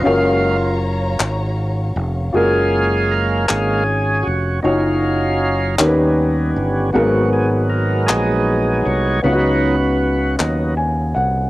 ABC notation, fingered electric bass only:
X:1
M:6/8
L:1/8
Q:3/8=52
K:F#
V:1 name="Fingered electric bass" clef=bass
F,,,3 G,,,2 E,,, | F,,,3 G,,,2 E,,, | F,,,3 D,,2 =G,,, | G,,,3 A,,,2 ^B,,, |
C,,3 D,,2 ^B,,, |]